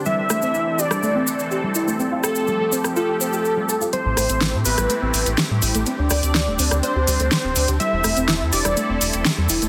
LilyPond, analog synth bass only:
\new Staff \with { instrumentName = "Analog synth bass" } { \clef bass \time 4/4 \key a \minor \tempo 4 = 124 r1 | r1 | r16 a,,16 a,,16 a,,8 a,16 a,,16 a,,16 r16 a,,16 a,,16 a,,16 r16 a,16 a,,16 a,,16 | r16 d,16 d,16 d,8 d,,16 d,16 d,16 r16 d,16 d,16 d,16 r16 d,,16 d,16 d,16 |
r16 e,,16 e,,16 e,,8 e,16 e,,16 e,,16 r16 e,,16 e,,16 e,,16 r16 e,16 e,,16 e,,16 | }